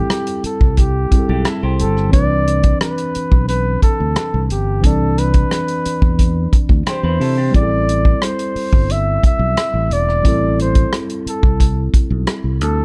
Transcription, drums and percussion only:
0.10 cross-stick loud
0.10 closed hi-hat medium
0.27 closed hi-hat medium
0.44 closed hi-hat medium
0.61 kick medium
0.77 kick medium
0.77 closed hi-hat medium
1.12 kick medium
1.12 closed hi-hat medium
1.45 cross-stick medium
1.45 closed hi-hat medium
1.79 closed hi-hat medium
1.97 cross-stick soft
2.13 kick medium
2.13 closed hi-hat medium
2.48 closed hi-hat medium
2.63 kick medium
2.63 closed hi-hat medium
2.81 cross-stick loud
2.81 closed hi-hat medium
2.98 closed hi-hat soft
3.15 closed hi-hat medium
3.32 kick medium
3.48 closed hi-hat medium
3.82 kick medium
3.82 cross-stick soft
3.82 closed hi-hat medium
4.16 cross-stick loud
4.16 closed hi-hat medium
4.50 closed hi-hat medium
4.84 kick medium
4.84 closed hi-hat medium
5.18 closed hi-hat medium
5.34 kick medium
5.34 closed hi-hat medium
5.51 cross-stick loud
5.51 closed hi-hat medium
5.68 closed hi-hat soft
5.85 closed hi-hat medium
6.02 kick medium
6.19 kick medium
6.19 closed hi-hat medium
6.53 kick medium
6.53 closed hi-hat medium
6.69 kick medium
6.86 cross-stick medium
6.86 closed hi-hat medium
7.21 open hi-hat soft
7.54 kick medium
7.54 closed hi-hat medium
7.89 closed hi-hat medium
8.05 kick medium
8.22 cross-stick medium
8.22 closed hi-hat medium
8.39 closed hi-hat soft
8.56 open hi-hat soft
8.73 kick medium
8.90 closed hi-hat medium
9.23 kick medium
9.23 closed hi-hat medium
9.57 cross-stick loud
9.57 closed hi-hat medium
9.91 closed hi-hat medium
10.09 cross-stick soft
10.25 kick medium
10.25 closed hi-hat medium
10.59 closed hi-hat medium
10.75 kick medium
10.75 closed hi-hat medium
10.93 cross-stick loud
10.93 closed hi-hat medium
11.10 closed hi-hat soft
11.27 closed hi-hat medium
11.43 kick medium
11.60 kick medium
11.60 closed hi-hat medium
11.94 kick medium
11.94 closed hi-hat medium
12.27 cross-stick loud
12.27 closed hi-hat medium
12.61 closed hi-hat medium

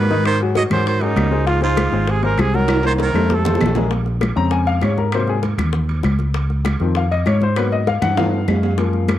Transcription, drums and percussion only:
0.11 high bongo soft
0.11 high conga medium
0.25 high bongo medium
0.25 high conga soft
0.25 high timbale medium
0.25 claves medium
0.41 high bongo soft
0.41 high conga soft
0.55 high bongo medium
0.55 high conga medium
0.55 high timbale medium
0.71 high bongo soft
0.71 high conga medium
0.71 low conga medium
0.71 high timbale medium
0.71 claves medium
0.87 high bongo medium
0.87 high conga soft
1.01 high conga soft
1.01 high timbale medium
1.16 high bongo soft
1.16 low bongo medium
1.16 high conga loud
1.16 high timbale medium
1.16 low timbale medium
1.16 claves medium
1.32 high bongo soft
1.47 high bongo medium
1.47 high conga soft
1.47 high timbale medium
1.62 high bongo soft
1.62 high conga soft
1.77 high bongo medium
1.77 high conga loud
1.77 high timbale medium
1.77 claves medium
1.92 high bongo soft
1.92 high conga soft
2.07 high bongo medium
2.07 high conga soft
2.07 high timbale medium
2.23 high conga soft
2.23 high timbale medium
2.38 high bongo soft
2.38 low bongo medium
2.38 high conga medium
2.38 high timbale medium
2.38 claves medium
2.54 high bongo soft
2.54 high conga medium
2.68 high bongo medium
2.68 high conga soft
2.68 high timbale loud
2.68 claves medium
2.83 high bongo soft
2.83 high conga soft
2.83 high timbale loud
2.98 high bongo medium
2.98 high conga medium
2.98 high timbale medium
3.14 high bongo soft
3.14 high conga medium
3.14 low timbale medium
3.14 claves medium
3.30 high bongo medium
3.30 high conga medium
3.30 low timbale medium
3.45 high bongo medium
3.45 low conga medium
3.45 low timbale loud
3.55 low bongo loud
3.61 low conga loud
3.61 low timbale medium
3.61 claves medium
3.66 low bongo loud
3.75 low bongo loud
3.75 low conga medium
3.75 low timbale loud
3.91 high bongo medium
3.91 high conga soft
3.91 high timbale medium
4.06 high bongo soft
4.06 high conga soft
4.21 high bongo medium
4.21 high conga loud
4.21 high timbale medium
4.21 claves medium
4.36 high bongo soft
4.36 high conga soft
4.51 high bongo medium
4.51 high conga soft
4.51 high timbale medium
4.67 high conga soft
4.67 high timbale medium
4.81 high bongo soft
4.81 low bongo medium
4.81 high conga medium
4.81 high timbale medium
4.81 low timbale medium
4.81 claves medium
4.97 high bongo soft
4.97 high conga medium
5.12 high bongo medium
5.12 high conga soft
5.12 high timbale loud
5.12 claves medium
5.27 high bongo soft
5.27 high conga soft
5.43 high bongo medium
5.43 high conga medium
5.43 high timbale medium
5.58 high bongo soft
5.58 high conga medium
5.58 low conga medium
5.58 high timbale medium
5.58 claves medium
5.73 high bongo medium
5.73 high conga soft
5.73 low conga medium
5.89 high conga soft
5.89 high timbale medium
6.03 high bongo soft
6.03 low bongo medium
6.03 high conga medium
6.03 high timbale medium
6.03 claves medium
6.19 high bongo soft
6.19 high conga medium
6.34 high bongo medium
6.34 high conga soft
6.34 high timbale medium
6.50 high bongo soft
6.50 high conga soft
6.65 high bongo medium
6.65 high conga loud
6.65 high timbale loud
6.65 claves medium
6.80 high bongo soft
6.80 high conga soft
6.95 high bongo medium
6.95 high conga soft
6.95 high timbale medium
7.12 high conga soft
7.12 high timbale medium
7.26 high bongo soft
7.26 low bongo medium
7.26 high conga medium
7.26 high timbale medium
7.26 claves medium
7.41 high bongo soft
7.41 high conga medium
7.56 high bongo medium
7.56 high timbale medium
7.56 claves medium
7.72 high bongo soft
7.72 high conga soft
7.87 high bongo medium
7.87 high conga medium
7.87 high timbale medium
8.02 high bongo soft
8.02 high conga medium
8.02 low conga medium
8.02 high timbale medium
8.02 claves medium
8.17 high bongo medium
8.17 high conga soft
8.17 low conga medium
8.17 high timbale medium
8.34 high conga soft
8.48 high bongo soft
8.48 low bongo medium
8.48 high conga medium
8.48 low timbale medium
8.48 claves medium
8.63 high bongo soft
8.63 low timbale medium
8.78 high bongo medium
8.78 high conga soft
8.78 high timbale medium
8.93 high bongo soft
8.93 high conga soft
9.08 high bongo medium
9.08 high conga loud
9.08 high timbale loud
9.08 claves medium

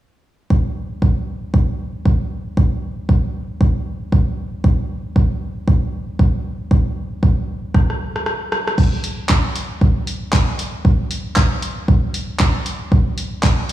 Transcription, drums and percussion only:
0.50 kick loud
1.02 kick loud
1.54 kick loud
2.05 kick loud
2.57 kick loud
3.09 kick loud
3.61 kick loud
4.12 kick loud
4.64 kick loud
5.16 kick loud
5.68 kick loud
6.19 kick loud
6.71 kick loud
7.23 kick loud
7.74 kick loud
7.74 cross-stick medium
7.90 cross-stick medium
8.16 cross-stick medium
8.26 cross-stick medium
8.52 cross-stick medium
8.67 cross-stick medium
8.78 kick loud
8.78 crash medium
9.04 open hi-hat loud
9.29 kick loud
9.29 clap loud
9.55 open hi-hat loud
9.81 kick loud
10.07 open hi-hat loud
10.33 kick loud
10.33 clap loud
10.59 open hi-hat loud
10.85 kick loud
11.11 open hi-hat loud
11.36 kick loud
11.36 clap loud
11.62 open hi-hat loud
11.88 kick loud
12.14 open hi-hat loud
12.40 kick loud
12.40 clap loud
12.66 open hi-hat loud
12.92 kick loud
13.18 open hi-hat loud
13.43 kick loud
13.43 clap loud
13.69 open hi-hat loud

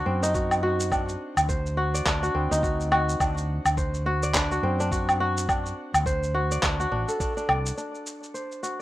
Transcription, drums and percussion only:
0.23 shaker medium
0.34 kick loud
0.34 shaker medium
0.51 low woodblock medium
0.51 shaker soft
0.80 shaker medium
0.92 kick loud
0.92 low woodblock medium
0.92 shaker medium
1.09 shaker soft
1.37 low woodblock medium
1.37 shaker medium
1.49 kick loud
1.49 shaker medium
1.66 shaker soft
1.95 shaker medium
2.06 kick loud
2.06 clap medium
2.06 shaker medium
2.23 shaker soft
2.52 shaker medium
2.63 kick loud
2.63 shaker soft
2.81 shaker soft
2.92 low woodblock medium
3.09 shaker medium
3.20 kick loud
3.20 low woodblock medium
3.20 shaker soft
3.38 shaker soft
3.66 low woodblock medium
3.66 shaker medium
3.77 kick loud
3.77 shaker medium
3.94 shaker soft
4.23 shaker medium
4.34 kick medium
4.34 clap medium
4.34 shaker medium
4.52 shaker soft
4.80 shaker medium
4.92 kick loud
4.92 shaker soft
5.09 low woodblock medium
5.09 shaker soft
5.37 shaker medium
5.49 kick loud
5.49 low woodblock medium
5.49 shaker soft
5.66 shaker soft
5.94 low woodblock medium
5.94 shaker medium
6.06 kick loud
6.06 shaker medium
6.23 shaker soft
6.51 shaker medium
6.63 kick loud
6.63 clap medium
6.63 shaker medium
6.80 shaker soft
7.08 shaker medium
7.20 kick loud
7.20 shaker medium
7.37 shaker soft
7.49 low woodblock medium
7.66 shaker medium
7.78 shaker soft
7.95 shaker soft
8.06 shaker medium
8.23 shaker soft
8.35 shaker soft
8.52 shaker soft
8.64 shaker medium

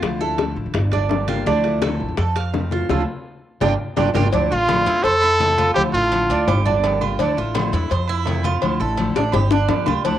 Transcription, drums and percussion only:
0.02 high bongo medium
0.02 high conga soft
0.02 high timbale medium
0.21 high bongo soft
0.21 high conga soft
0.38 high bongo medium
0.38 high conga medium
0.38 high timbale medium
0.38 low timbale medium
0.56 high conga soft
0.74 high bongo medium
0.74 high conga soft
0.74 low conga medium
0.74 high timbale medium
0.92 high bongo soft
0.92 high conga soft
0.92 low conga medium
0.92 high timbale medium
1.09 high bongo soft
1.09 low bongo medium
1.09 high conga soft
1.09 low timbale medium
1.28 high bongo soft
1.28 high conga medium
1.28 high timbale loud
1.46 high bongo medium
1.46 high conga soft
1.64 high bongo soft
1.64 high conga soft
1.64 high timbale medium
1.82 high bongo medium
1.82 high conga loud
1.82 high timbale loud
1.82 low timbale medium
2.00 high conga soft
2.17 high bongo medium
2.17 high conga soft
2.17 high timbale medium
2.36 high bongo soft
2.36 high conga soft
2.36 high timbale medium
2.54 high bongo soft
2.54 low bongo medium
2.54 high conga medium
2.54 low timbale medium
2.71 high bongo soft
2.71 high conga medium
2.89 high bongo medium
2.89 high conga loud
2.89 high timbale medium
3.61 high bongo medium
3.61 high conga loud
3.61 high timbale loud
3.97 high bongo medium
3.97 high conga loud
3.97 high timbale loud
4.15 high bongo medium
4.15 high conga loud
4.15 high timbale loud
4.33 cowbell loud
4.33 high conga soft
4.51 high conga soft
4.69 cowbell medium
4.69 high conga loud
4.69 low timbale medium
4.69 low agogo loud
4.87 cowbell medium
4.87 high conga soft
5.04 cowbell loud
5.04 high conga soft
5.04 low agogo loud
5.22 high conga soft
5.22 low agogo loud
5.40 cowbell medium
5.40 high conga medium
5.40 low timbale medium
5.58 cowbell medium
5.58 high conga medium
5.58 low agogo loud
5.76 cowbell loud
5.76 high conga soft
5.76 low agogo loud
5.95 high conga soft
6.12 cowbell medium
6.12 high conga medium
6.12 low timbale medium
6.12 low agogo medium
6.30 cowbell medium
6.30 high conga soft
6.48 cowbell loud
6.48 high conga soft
6.48 low conga medium
6.48 low agogo loud
6.67 high conga soft
6.67 low conga medium
6.83 cowbell medium
6.83 high conga soft
6.83 low timbale medium
6.83 low agogo loud
7.01 high conga medium
7.01 low agogo loud
7.19 cowbell loud
7.19 high conga soft
7.37 high conga soft
7.55 cowbell medium
7.55 high conga loud
7.55 low timbale medium
7.55 low agogo loud
7.73 cowbell medium
7.73 high conga soft
7.90 cowbell medium
7.90 high conga soft
7.90 low agogo medium
8.07 high conga soft
8.07 low agogo loud
8.26 cowbell medium
8.26 high conga medium
8.26 low timbale medium
8.43 cowbell medium
8.43 high conga medium
8.43 low agogo loud
8.62 cowbell loud
8.62 high conga soft
8.62 low agogo medium
8.81 high conga soft
8.97 cowbell medium
8.97 high conga medium
8.97 low timbale medium
8.97 low agogo medium
9.16 cowbell medium
9.16 high bongo loud
9.16 high conga soft
9.32 cowbell loud
9.32 high bongo medium
9.32 high conga soft
9.32 low conga medium
9.32 low agogo loud
9.51 low bongo loud
9.51 high conga soft
9.68 cowbell medium
9.68 low bongo loud
9.68 low timbale medium
9.68 low agogo medium
9.86 low bongo medium
9.86 high conga medium
9.86 low agogo loud
10.05 cowbell loud
10.05 high conga soft

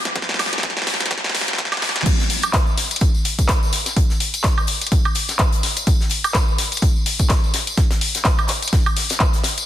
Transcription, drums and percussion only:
0.05 snare medium
0.05 closed hi-hat medium
0.16 kick loud
0.16 snare loud
0.16 closed hi-hat medium
0.22 snare medium
0.29 snare medium
0.34 snare medium
0.39 snare medium
0.39 open hi-hat loud
0.39 high woodblock medium
0.46 snare medium
0.53 snare medium
0.53 closed hi-hat medium
0.58 snare medium
0.63 kick loud
0.63 snare loud
0.63 closed hi-hat medium
0.70 snare medium
0.77 snare medium
0.82 snare medium
0.87 snare loud
0.87 open hi-hat medium
0.94 snare medium
1.00 snare medium
1.00 closed hi-hat medium
1.06 snare medium
1.06 closed hi-hat medium
1.11 kick loud
1.11 snare loud
1.11 closed hi-hat medium
1.18 snare medium
1.24 snare medium
1.29 snare loud
1.35 snare loud
1.35 open hi-hat loud
1.41 snare medium
1.48 snare medium
1.48 closed hi-hat medium
1.53 snare medium
1.58 kick loud
1.58 snare loud
1.58 closed hi-hat medium
1.65 snare medium
1.72 snare medium
1.72 high woodblock medium
1.77 snare loud
1.82 snare loud
1.82 open hi-hat medium
1.89 snare medium
1.96 snare loud
1.96 closed hi-hat medium
2.01 snare loud
2.06 kick loud
2.06 closed hi-hat medium
2.06 crash loud
2.06 tambourine medium
2.20 snare medium
2.20 tambourine soft
2.30 closed hi-hat medium
2.30 open hi-hat loud
2.43 closed hi-hat medium
2.43 tambourine medium
2.43 high woodblock medium
2.53 kick loud
2.53 snare loud
2.53 clap loud
2.53 closed hi-hat medium
2.53 tambourine medium
2.67 tambourine soft
2.77 snare medium
2.77 closed hi-hat medium
2.77 open hi-hat loud
2.91 closed hi-hat soft
2.91 tambourine medium
2.96 closed hi-hat medium
3.01 kick loud
3.01 closed hi-hat medium
3.01 tambourine medium
3.15 tambourine soft
3.25 closed hi-hat medium
3.25 open hi-hat loud
3.39 kick medium
3.39 closed hi-hat medium
3.39 closed hi-hat soft
3.39 tambourine medium
3.48 kick loud
3.48 snare loud
3.48 clap loud
3.48 closed hi-hat medium
3.48 tambourine medium
3.63 tambourine soft
3.72 snare soft
3.72 closed hi-hat medium
3.72 open hi-hat loud
3.86 snare medium
3.86 closed hi-hat medium
3.86 tambourine medium
3.97 kick loud
3.97 closed hi-hat medium
4.10 snare soft
4.10 tambourine soft
4.20 closed hi-hat medium
4.20 open hi-hat loud
4.34 closed hi-hat medium
4.34 tambourine medium
4.44 kick loud
4.44 snare loud
4.44 clap loud
4.44 closed hi-hat medium
4.58 tambourine soft
4.58 high woodblock medium
4.67 closed hi-hat medium
4.67 open hi-hat loud
4.81 closed hi-hat soft
4.81 tambourine medium
4.87 closed hi-hat medium
4.92 kick loud
4.92 closed hi-hat medium
4.92 tambourine medium
5.05 tambourine soft
5.05 high woodblock medium
5.15 closed hi-hat medium
5.15 open hi-hat loud
5.29 snare medium
5.29 closed hi-hat medium
5.29 tambourine medium
5.39 kick loud
5.39 clap loud
5.39 closed hi-hat medium
5.39 tambourine medium
5.52 closed hi-hat medium
5.52 tambourine soft
5.63 snare medium
5.63 open hi-hat loud
5.77 closed hi-hat medium
5.77 tambourine medium
5.87 kick loud
5.87 closed hi-hat medium
5.87 tambourine medium
6.00 snare medium
6.00 tambourine soft
6.10 closed hi-hat medium
6.10 open hi-hat loud
6.24 closed hi-hat medium
6.24 tambourine medium
6.24 high woodblock medium
6.34 kick loud
6.34 snare loud
6.34 clap loud
6.34 closed hi-hat medium
6.34 tambourine medium
6.48 tambourine soft
6.58 snare medium
6.58 closed hi-hat medium
6.58 open hi-hat loud
6.72 closed hi-hat soft
6.72 tambourine medium
6.77 closed hi-hat medium
6.82 kick loud
6.82 closed hi-hat medium
6.82 tambourine medium
6.96 tambourine soft
7.06 closed hi-hat medium
7.06 open hi-hat loud
7.19 kick medium
7.19 closed hi-hat soft
7.19 tambourine medium
7.29 kick loud
7.29 snare loud
7.29 clap loud
7.29 closed hi-hat medium
7.29 tambourine medium
7.44 tambourine soft
7.54 snare loud
7.54 closed hi-hat medium
7.54 open hi-hat loud
7.67 closed hi-hat medium
7.67 tambourine medium
7.77 kick loud
7.77 snare medium
7.77 closed hi-hat medium
7.77 tambourine medium
7.91 snare loud
7.91 closed hi-hat medium
7.91 tambourine soft
8.01 open hi-hat loud
8.15 snare medium
8.15 closed hi-hat soft
8.15 closed hi-hat medium
8.15 tambourine medium
8.24 kick loud
8.24 snare loud
8.24 clap loud
8.24 closed hi-hat medium
8.24 tambourine medium
8.39 tambourine soft
8.39 high woodblock medium
8.48 snare medium
8.48 clap soft
8.48 closed hi-hat medium
8.48 open hi-hat loud
8.62 closed hi-hat soft
8.62 tambourine medium
8.68 closed hi-hat medium
8.73 kick loud
8.73 snare medium
8.73 closed hi-hat medium
8.73 tambourine medium
8.86 tambourine soft
8.86 high woodblock medium
8.96 snare soft
8.96 closed hi-hat medium
8.96 open hi-hat loud
9.09 snare loud
9.09 closed hi-hat soft
9.09 closed hi-hat medium
9.09 tambourine medium
9.20 kick loud
9.20 clap loud
9.20 closed hi-hat medium
9.33 snare soft
9.33 closed hi-hat medium
9.33 tambourine soft
9.43 snare loud
9.43 closed hi-hat medium
9.43 open hi-hat loud
9.58 closed hi-hat medium
9.58 tambourine medium

